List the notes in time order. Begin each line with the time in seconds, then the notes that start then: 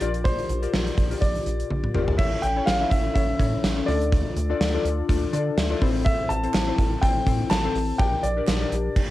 Already playing: D5
0.01 A#1 A#2 F4 G4 A#4 D5, closed hi-hat
0.14 closed hi-hat
0.24 C5, kick, closed hi-hat
0.39 closed hi-hat
0.49 A#1, closed hi-hat
0.62 F4 G4 A#4 D5, closed hi-hat
0.74 A#1, snare
0.87 closed hi-hat
0.98 A#1, kick, closed hi-hat
1.11 F4 G4 A#4 D5, closed hi-hat
1.21 A#1 D5, kick, closed hi-hat
1.35 closed hi-hat
1.46 A#1, closed hi-hat
1.60 closed hi-hat
1.71 A#1, high tom
1.84 mid tom
1.94 G1 F4 G4 A#4 D5, mid tom
2.08 floor tom
2.18 A1 A2 C#4 E4 A4 C#5 E5, kick, crash
2.42 A1 G5, closed hi-hat
2.56 C#4 E4 A4 C#5
2.66 A1 F5, snare, closed hi-hat
2.80 C#4 E4 A4 E5
2.90 A1 E5, kick, closed hi-hat
3.14 A1 C#4 E4 A4 C#5 E5, kick, closed hi-hat
3.39 A2 C#4 E4 A4 C#5, kick, closed hi-hat
3.64 A1, snare, closed hi-hat
3.77 C#4 E4 A4 C#5
3.86 D2 D3 D4 F4 A4 D5, open hi-hat
4.01 closed hi-hat
4.12 kick, closed hi-hat
4.36 D2, closed hi-hat
4.49 D4 F4 A4 D5
4.61 D2, snare, closed hi-hat
4.74 D4 F4 A4 D5
4.85 D2, closed hi-hat
5.09 D2 D4 F4 A4 D5, kick, closed hi-hat
5.33 D3 D4 F4 A4 D5, closed hi-hat
5.57 D2 E5, snare, closed hi-hat
5.70 D4 F4 A4 D5
5.81 A1 A2 C4 E4 A4 C5, kick, open hi-hat
6.04 E5, kick, closed hi-hat
6.29 A1 A5, closed hi-hat
6.43 C4 E4 A4 C5, closed hi-hat
6.54 A1, snare, clap, closed hi-hat
6.67 C4 E4 A4 C5
6.78 A1, kick, closed hi-hat
7.02 A1 C4 E4 A4 C5 G5, kick, closed hi-hat
7.26 A2 C4 E4 A4 C5, kick, closed hi-hat
7.50 A1 A5, snare, clap, closed hi-hat
7.64 C4 E4 A4 C5
7.75 A1, open hi-hat
7.98 A#1 A#2 D4 G4 A#4 D5 G5, kick, closed hi-hat
8.23 A#1 D5, closed hi-hat
8.37 D4 G4 A#4 D5
8.48 A#1, snare, clap, closed hi-hat
8.61 D4 G4 A#4 D5
8.72 A#1, closed hi-hat
8.96 kick, crash